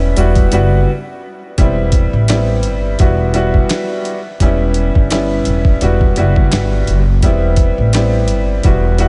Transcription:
Already playing: E1 G3 B3 C#4 E4
0.17 E1 G3 B3 E4 F#4, closed hi-hat, shaker
0.35 kick, closed hi-hat
0.52 F#1 G3 B3 E4 F#4, closed hi-hat, shaker
1.58 E1 G3 B3 C4 E4, kick, closed hi-hat
1.92 kick, closed hi-hat
2.13 A1
2.28 G3 B3 C4 E4, snare, clap, closed hi-hat
2.63 G1, closed hi-hat
2.99 E1 G3 B3 E4 F#4, kick, closed hi-hat
3.34 G3 B3 E4 F#4, closed hi-hat
3.54 kick
3.70 snare, clap, closed hi-hat
4.05 closed hi-hat
4.40 E1 G3 B3 C#4 E4, kick, closed hi-hat
4.74 closed hi-hat
4.95 G1, kick
5.11 G3 B3 C#4 E4, snare, clap, closed hi-hat
5.45 E1, closed hi-hat
5.65 kick
5.81 E1 G3 B3 E4 F#4, closed hi-hat
6.01 kick
6.16 F#1 G3 B3 E4 F#4, closed hi-hat
6.36 kick
6.52 G1, snare, clap, closed hi-hat
6.87 F#1, closed hi-hat
7.23 E1 G3 B3 C4 E4, kick, closed hi-hat
7.56 kick, closed hi-hat
7.78 A1
7.93 G3 B3 C4 E4, snare, clap, closed hi-hat
8.28 G1, closed hi-hat
8.63 E1 G3 B3 E4 F#4, kick, closed hi-hat
8.98 G3 B3 E4 F#4, closed hi-hat

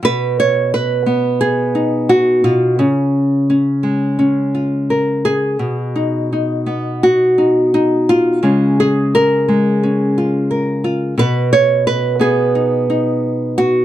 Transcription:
0.03 B2 B4
0.40 C#5
0.74 B4
1.06 B3
1.41 G#4
1.75 D#4
2.09 F#4
2.44 B2 F4
2.79 C#3 C#4
3.50 C#4
3.83 G#3
4.19 C#4
4.55 F4
4.90 A#4
5.25 G#4
5.59 B2
5.96 D#4
6.33 D#4
6.66 B3
7.03 F#4
7.38 D#4
7.74 D#4
8.09 F4
8.43 C#3 G#3 C#4
8.80 G#4
9.15 A#4
9.48 G#3
9.83 C#4
10.18 F4
10.51 A#4
10.84 F4
11.18 B2 B4
11.53 C#5
11.87 B4
12.19 B3 G#4
12.55 D#4
12.90 D#4
13.58 F#4

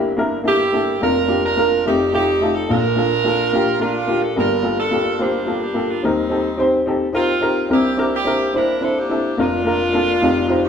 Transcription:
Already playing: G1 G2 A3 A#3 D4 E4 G4
0.16 A#3 D4 E4 A#4
0.44 A#3 D4 E4 G4 A4
0.72 A#3 D4 E4 A4
1.01 F1 F2 A#3 D4 F4 A#4
1.28 A#3 D4 F4 G4
1.45 D4 F4 A#4
1.56 A#3 D4 F4 A#4
1.86 F1 F2 A3 C4 D#4 F4 G4
2.13 A3 C4 D#4 F4 G4
2.41 A3 D#4 F4 A4
2.54 A4
2.69 A#1 A#2 A#3 D4 F4 A4 A#4
2.96 A#3 D4 F4 A4
3.24 A#3 D4 F4 A4
3.53 A#3 D4 F4 G4
3.79 A3 A#3 D4 F4 A#4
4.07 A#3 D4 F4 G4
4.21 A4
4.36 G1 G2 A#3 D4 F4 G4 A4 A#4
4.63 A#3 F4 G4 A4
4.79 D4 F4 A4
4.91 A#3 F4 G4 A4
5.19 A#3 D4 F4 G4 C5
5.46 A#3 F4 G4 A4
5.63 G4
5.74 A#3 F4 G4 A4
5.90 F4
6.03 D#2 D#3 G3 C4 D#4 G4 A#4
6.29 C4 D#4 G4 A4
6.57 C4 D#4 G4 C5
6.86 C4 D#4 G4 A4
7.13 A#3 C4 D#4 F4 G4 A#4
7.41 C4 D#4 G4 A#4
7.69 C2 C3 A#3 C4 D4 E4 G4 A#4
7.97 C4 D4 E4 G4 A#4
8.14 A#3 E4 G4
8.25 C4 D4 E4 A#4
8.53 C4 D4 E4 A#4 C5
8.81 C4 D4 E4 A4 C5
8.97 A#3 E4 G4
9.09 C4 D4 E4 A4
9.37 F1 F2 A#3 D4 F4 A#4
9.65 A#3 D4 F4 A#4
9.93 A#3 D4 F4 A4
10.21 F1 F2 D#4 F4 G4 A4
10.48 D#4 F4 G4 C5
10.64 C4 D#4 G4

